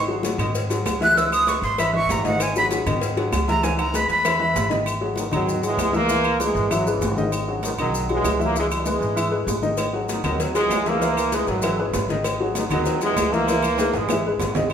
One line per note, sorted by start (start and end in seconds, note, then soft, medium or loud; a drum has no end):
0.00 0.33 G#1 medium
0.08 0.21 F#3 medium
0.08 0.21 F#4 medium
0.08 0.21 G#4 medium
0.08 high conga soft
0.23 0.36 F#3 medium
0.23 0.36 F#4 medium
0.23 0.36 G#4 medium
0.23 cowbell medium
0.23 high conga loud
0.23 low timbale medium
0.23 low agogo medium
0.23 maracas medium
0.38 0.82 G#2 loud
0.38 0.65 D#3 medium
0.38 0.65 D#4 medium
0.38 0.65 D#5 medium
0.38 cowbell medium
0.38 high conga soft
0.38 low conga medium
0.38 low agogo loud
0.38 claves medium
0.38 maracas soft
0.55 cowbell loud
0.55 high conga soft
0.55 maracas medium
0.70 0.96 F#3 medium
0.70 0.96 F#4 medium
0.70 0.96 G#4 medium
0.70 cowbell medium
0.70 high conga soft
0.70 low agogo medium
0.70 maracas medium
0.85 1.57 C#2 medium
0.85 cowbell medium
0.85 high conga medium
0.85 low timbale medium
0.85 low agogo loud
0.85 claves medium
0.85 maracas medium
1.00 1.14 E3 medium
1.00 1.14 E4 medium
1.00 1.14 E5 medium
1.00 1.19 F#6 loud
1.00 cowbell medium
1.00 high conga medium
1.00 maracas soft
1.16 1.41 E3 medium
1.16 1.42 E4 medium
1.16 1.42 E5 medium
1.16 1.32 E6 loud
1.16 cowbell loud
1.16 high conga soft
1.16 low agogo medium
1.16 maracas medium
1.32 1.50 D#6 loud
1.32 high conga soft
1.32 low agogo loud
1.32 claves medium
1.32 maracas medium
1.47 1.73 G#3 medium
1.47 1.73 G#4 medium
1.47 1.73 B4 medium
1.47 1.63 C#6 loud
1.47 cowbell medium
1.47 high conga medium
1.47 low timbale medium
1.47 low agogo medium
1.47 maracas medium
1.62 2.05 G#1 medium
1.62 1.81 C6 loud
1.62 cowbell medium
1.62 high conga soft
1.62 maracas soft
1.78 1.91 E3 medium
1.78 1.91 E4 medium
1.78 1.92 E5 medium
1.78 1.94 B5 medium
1.78 cowbell loud
1.78 high conga soft
1.78 low agogo loud
1.78 claves medium
1.78 maracas medium
1.93 2.19 E3 medium
1.93 2.19 E4 medium
1.93 2.19 E5 loud
1.93 2.13 C#6 loud
1.93 high conga soft
2.09 2.81 G#1 medium
2.09 2.26 A#5 loud
2.09 cowbell medium
2.09 high conga medium
2.09 low timbale medium
2.09 low agogo medium
2.09 maracas medium
2.24 2.49 D#3 medium
2.24 2.49 D#4 medium
2.24 2.50 D#5 medium
2.24 2.44 F#5 loud
2.24 cowbell medium
2.24 high conga medium
2.24 maracas soft
2.40 2.57 G#5 loud
2.40 cowbell loud
2.40 high conga soft
2.40 low agogo loud
2.40 claves medium
2.40 maracas medium
2.56 2.68 F#3 medium
2.56 2.69 F#4 medium
2.56 2.69 G#4 medium
2.56 2.66 B5 loud
2.56 high conga soft
2.56 maracas medium
2.71 2.84 F#3 medium
2.71 2.84 F#4 medium
2.71 2.84 G#4 medium
2.71 cowbell medium
2.71 high conga loud
2.71 low timbale medium
2.71 low agogo medium
2.71 maracas medium
2.86 3.29 G#2 medium
2.86 3.12 D#3 loud
2.86 3.12 D#4 medium
2.86 3.12 D#5 medium
2.86 cowbell medium
2.86 high conga soft
2.86 low conga medium
2.86 low agogo loud
2.86 claves medium
2.86 maracas soft
3.01 cowbell loud
3.01 high conga soft
3.01 maracas medium
3.17 3.42 F#3 medium
3.17 3.42 F#4 medium
3.17 3.43 G#4 medium
3.17 cowbell medium
3.17 high conga soft
3.17 low agogo medium
3.32 4.04 C#2 loud
3.32 cowbell medium
3.32 high conga medium
3.32 low timbale medium
3.32 low agogo loud
3.32 claves medium
3.32 maracas medium
3.48 3.61 E3 medium
3.48 3.61 E4 medium
3.48 3.61 E5 medium
3.48 3.65 A#5 loud
3.48 cowbell medium
3.48 high conga medium
3.48 maracas soft
3.63 3.89 E3 medium
3.63 3.89 E4 medium
3.63 3.89 E5 medium
3.63 3.78 G#5 medium
3.63 cowbell loud
3.63 high conga soft
3.63 high timbale medium
3.63 low agogo medium
3.63 maracas medium
3.79 3.98 A#5 medium
3.79 high conga soft
3.79 high timbale medium
3.79 low agogo loud
3.79 claves medium
3.94 4.19 G#3 medium
3.94 4.19 G#4 medium
3.94 4.20 B4 medium
3.94 4.10 B5 loud
3.94 cowbell medium
3.94 high conga loud
3.94 low agogo medium
3.94 maracas medium
4.08 4.52 E2 medium
4.08 4.75 B5 loud
4.08 cowbell medium
4.08 high conga soft
4.08 maracas soft
4.25 4.38 E3 medium
4.25 4.38 E4 medium
4.25 4.38 E5 medium
4.25 cowbell loud
4.25 high conga soft
4.25 low agogo loud
4.25 claves medium
4.25 maracas medium
4.40 4.65 E3 medium
4.40 4.66 E4 medium
4.40 4.66 E5 medium
4.40 high conga soft
4.55 5.27 G#1 loud
4.55 cowbell medium
4.55 high conga medium
4.55 low timbale medium
4.55 low agogo medium
4.55 maracas medium
4.69 4.83 D#3 medium
4.69 4.83 D#4 medium
4.69 4.83 D#5 medium
4.69 cowbell medium
4.69 high conga medium
4.69 low timbale medium
4.69 maracas soft
4.86 high conga soft
4.86 low agogo loud
4.86 claves medium
4.86 maracas medium
5.01 5.27 F#3 medium
5.01 5.27 F#4 medium
5.01 5.27 G#4 medium
5.01 high conga soft
5.16 5.26 B2 medium
5.16 5.25 D#3 medium
5.16 high conga medium
5.16 low timbale medium
5.16 low agogo medium
5.16 maracas medium
5.31 5.75 G#2 medium
5.31 5.57 D#3 medium
5.31 5.62 D#3 medium
5.31 5.62 F#3 loud
5.31 5.58 D#4 medium
5.31 5.57 D#5 medium
5.31 high conga soft
5.31 low conga medium
5.31 low agogo loud
5.31 claves medium
5.31 maracas soft
5.47 high conga soft
5.47 low conga medium
5.47 maracas medium
5.62 5.88 F#3 medium
5.62 5.89 F#4 medium
5.62 5.89 G#4 medium
5.62 high conga soft
5.62 low agogo medium
5.62 maracas medium
5.67 5.96 E3 medium
5.67 5.96 G#3 loud
5.77 6.49 C#2 medium
5.77 high conga medium
5.77 low timbale medium
5.77 low agogo loud
5.77 claves medium
5.77 maracas medium
5.93 6.06 E3 medium
5.93 6.38 A#3 loud
5.93 6.06 E4 medium
5.93 6.06 E5 medium
5.93 high conga medium
5.93 maracas soft
5.97 6.39 E3 loud
6.08 6.35 E3 medium
6.08 6.35 E4 medium
6.08 6.35 E5 medium
6.08 high conga soft
6.08 low agogo medium
6.08 maracas medium
6.25 high conga soft
6.25 low agogo loud
6.25 claves medium
6.40 6.65 G#3 medium
6.40 6.65 G#4 medium
6.40 6.65 B4 medium
6.40 high conga loud
6.40 low timbale medium
6.40 low agogo medium
6.40 maracas medium
6.44 6.73 E3 medium
6.44 6.73 G#3 loud
6.55 6.98 G#1 loud
6.55 high conga soft
6.55 maracas soft
6.71 6.88 C#3 medium
6.71 6.83 E3 medium
6.71 6.88 F#3 loud
6.71 6.84 E4 medium
6.71 6.84 E5 loud
6.71 high conga soft
6.71 low agogo loud
6.71 claves medium
6.71 maracas medium
6.87 7.19 C#3 medium
6.87 7.12 G#3 medium
6.87 7.12 G#4 medium
6.87 7.12 B4 medium
6.87 high conga soft
6.87 maracas medium
6.91 7.19 E3 medium
7.01 7.73 G#1 medium
7.01 high conga medium
7.01 low timbale medium
7.01 low agogo medium
7.01 maracas medium
7.17 7.43 D#3 medium
7.17 7.43 D#4 medium
7.17 7.43 D#5 loud
7.17 high conga medium
7.17 maracas soft
7.32 high conga soft
7.32 low agogo loud
7.32 claves medium
7.32 maracas medium
7.48 7.73 F#3 medium
7.48 7.73 F#4 medium
7.48 7.74 G#4 medium
7.48 high conga soft
7.63 7.72 B2 medium
7.63 7.72 D#3 medium
7.63 high conga loud
7.63 low timbale medium
7.63 low agogo medium
7.63 maracas medium
7.78 8.21 B1 medium
7.78 8.04 D#3 medium
7.78 8.08 D#3 medium
7.78 8.08 F#3 loud
7.78 8.04 D#4 medium
7.78 8.04 D#5 medium
7.78 high conga soft
7.78 low conga medium
7.78 low agogo loud
7.78 claves medium
7.78 maracas soft
7.94 high conga soft
7.94 maracas medium
8.09 8.40 E3 medium
8.09 8.35 F#3 medium
8.09 8.35 F#4 medium
8.09 8.35 G#4 medium
8.09 high conga soft
8.09 low agogo medium
8.14 8.40 G#3 loud
8.24 8.96 C#2 loud
8.24 high conga medium
8.24 low timbale medium
8.24 low agogo loud
8.24 claves medium
8.24 maracas medium
8.39 8.52 E3 medium
8.39 8.53 E4 medium
8.39 8.53 E5 medium
8.39 high conga medium
8.39 maracas soft
8.44 8.57 F#3 medium
8.44 8.58 A#3 loud
8.56 8.81 E3 medium
8.56 8.64 E3 medium
8.56 8.65 G#3 loud
8.56 8.81 E4 medium
8.56 8.81 E5 medium
8.56 low agogo medium
8.56 maracas medium
8.71 9.60 E3 medium
8.71 9.61 G#3 loud
8.71 high conga soft
8.71 low agogo loud
8.71 claves medium
8.71 maracas medium
8.86 9.11 G#3 medium
8.86 9.11 G#4 medium
8.86 9.12 B4 medium
8.86 high conga loud
8.86 low timbale medium
8.86 low agogo medium
8.86 maracas medium
9.01 9.44 G#1 medium
9.01 high conga soft
9.01 maracas soft
9.16 9.29 E3 medium
9.16 9.29 E4 medium
9.16 9.29 E5 medium
9.16 high conga soft
9.16 low agogo loud
9.16 claves medium
9.16 maracas medium
9.32 9.57 G#3 medium
9.32 9.57 G#4 medium
9.32 9.57 B4 medium
9.32 high conga soft
9.47 10.19 G#1 medium
9.47 high conga medium
9.47 low timbale medium
9.47 low agogo medium
9.47 maracas medium
9.62 9.88 D#3 medium
9.62 9.88 D#4 medium
9.62 9.88 D#5 medium
9.62 high conga medium
9.62 maracas soft
9.77 cowbell loud
9.77 high conga soft
9.77 low agogo loud
9.77 claves medium
9.77 maracas medium
9.93 10.19 F#3 medium
9.93 10.19 F#4 medium
9.93 10.19 G#4 medium
9.93 high conga soft
10.09 10.25 B2 medium
10.09 10.25 D#3 medium
10.09 cowbell medium
10.09 high conga loud
10.09 low timbale medium
10.09 low agogo medium
10.09 maracas medium
10.24 10.67 D#2 medium
10.24 10.50 D#3 medium
10.24 10.57 D#3 medium
10.24 10.56 F#3 loud
10.24 10.50 D#4 medium
10.24 10.50 D#5 medium
10.24 cowbell medium
10.24 high conga soft
10.24 low conga medium
10.24 low agogo loud
10.24 claves medium
10.24 maracas soft
10.40 cowbell loud
10.40 high conga soft
10.40 low conga medium
10.40 maracas medium
10.54 10.84 E3 medium
10.54 10.80 F#3 medium
10.54 10.84 G#3 loud
10.54 10.80 F#4 medium
10.54 10.80 G#4 medium
10.54 cowbell medium
10.54 high conga soft
10.54 low agogo medium
10.54 maracas medium
10.69 11.41 C#2 medium
10.69 cowbell medium
10.69 high conga medium
10.69 low timbale medium
10.69 low agogo loud
10.69 claves medium
10.69 maracas medium
10.86 10.98 E3 medium
10.86 11.33 E3 loud
10.86 11.33 A#3 loud
10.86 10.99 E4 medium
10.86 10.99 E5 medium
10.86 cowbell medium
10.86 high conga medium
10.86 maracas soft
11.01 11.27 E3 medium
11.01 11.27 E4 medium
11.01 11.27 E5 medium
11.01 cowbell loud
11.01 high conga soft
11.01 low agogo medium
11.01 maracas medium
11.17 high conga soft
11.17 low agogo loud
11.17 claves medium
11.17 maracas medium
11.32 11.49 E3 medium
11.32 11.58 G#3 medium
11.32 11.49 G#3 loud
11.32 11.58 G#4 medium
11.32 11.58 B4 medium
11.32 cowbell medium
11.32 high conga loud
11.32 low timbale medium
11.32 low agogo medium
11.32 maracas medium
11.47 11.90 G#1 medium
11.47 11.79 D#3 medium
11.47 11.79 F#3 loud
11.47 cowbell medium
11.47 high conga soft
11.47 maracas soft
11.62 11.76 E3 medium
11.62 11.76 E4 medium
11.62 11.76 E5 medium
11.62 cowbell loud
11.62 high conga soft
11.62 low agogo loud
11.62 claves medium
11.62 maracas medium
11.78 12.10 C#3 medium
11.78 12.10 E3 medium
11.78 12.04 G#3 medium
11.78 12.04 G#4 medium
11.78 12.04 B4 medium
11.78 high conga soft
11.93 12.65 G#1 medium
11.93 cowbell medium
11.93 high conga medium
11.93 low timbale medium
11.93 low agogo medium
11.93 maracas medium
12.09 12.35 D#3 medium
12.09 12.35 D#4 medium
12.09 12.35 D#5 loud
12.09 cowbell medium
12.09 high conga medium
12.09 maracas soft
12.24 cowbell loud
12.24 high conga soft
12.24 low agogo loud
12.24 claves medium
12.24 maracas medium
12.40 12.65 F#3 medium
12.40 12.65 F#4 medium
12.40 12.66 G#4 medium
12.40 high conga soft
12.55 12.64 B2 medium
12.55 12.64 D#3 medium
12.55 cowbell medium
12.55 high conga loud
12.55 low timbale medium
12.55 low agogo medium
12.55 maracas medium
12.70 13.14 D#2 loud
12.70 12.96 D#3 medium
12.70 13.00 D#3 medium
12.70 13.00 F#3 medium
12.70 12.96 D#4 loud
12.70 12.97 D#5 medium
12.70 cowbell medium
12.70 high conga soft
12.70 low conga medium
12.70 low agogo loud
12.70 claves medium
12.70 maracas soft
12.86 cowbell loud
12.86 high conga soft
12.86 low conga medium
12.86 maracas medium
13.01 13.31 E3 medium
13.01 13.27 F#3 medium
13.01 13.31 G#3 loud
13.01 13.27 F#4 medium
13.01 13.28 G#4 medium
13.01 cowbell medium
13.01 high conga soft
13.01 low agogo medium
13.01 maracas medium
13.16 13.88 C#2 medium
13.16 cowbell medium
13.16 high conga medium
13.16 low timbale loud
13.16 low agogo loud
13.16 claves medium
13.16 maracas medium
13.33 13.46 E3 loud
13.33 13.95 E3 medium
13.33 13.94 A#3 loud
13.33 13.46 E4 medium
13.33 13.46 E5 medium
13.33 cowbell medium
13.33 high conga medium
13.33 maracas soft
13.48 13.74 E3 medium
13.48 13.74 E4 medium
13.48 13.74 E5 medium
13.48 cowbell loud
13.48 high conga soft
13.48 low agogo medium
13.48 maracas medium
13.62 high conga soft
13.62 low agogo loud
13.62 claves medium
13.62 maracas medium
13.78 14.04 G#3 medium
13.78 14.05 G#4 medium
13.78 14.05 B4 medium
13.78 cowbell medium
13.78 high conga loud
13.78 high timbale loud
13.78 low agogo medium
13.78 maracas medium
13.94 14.37 G#1 medium
13.94 14.26 E3 medium
13.94 14.26 G#3 loud
13.94 cowbell medium
13.94 high conga soft
13.94 high timbale loud
13.94 maracas soft
14.08 14.23 E3 medium
14.08 14.23 E4 medium
14.08 14.23 E5 medium
14.08 cowbell loud
14.08 high conga medium
14.08 low timbale loud
14.08 low agogo loud
14.08 claves medium
14.08 maracas medium
14.26 14.51 G#3 medium
14.26 14.51 G#4 medium
14.26 14.51 B4 medium
14.39 14.73 G#1 medium
14.39 cowbell medium
14.39 low conga medium
14.39 low timbale medium
14.39 low agogo loud
14.39 maracas medium
14.55 14.69 D#3 medium
14.55 14.69 D#4 medium
14.55 14.69 D#5 medium
14.55 cowbell medium
14.55 low conga loud
14.55 low timbale loud
14.55 maracas soft
14.70 low agogo loud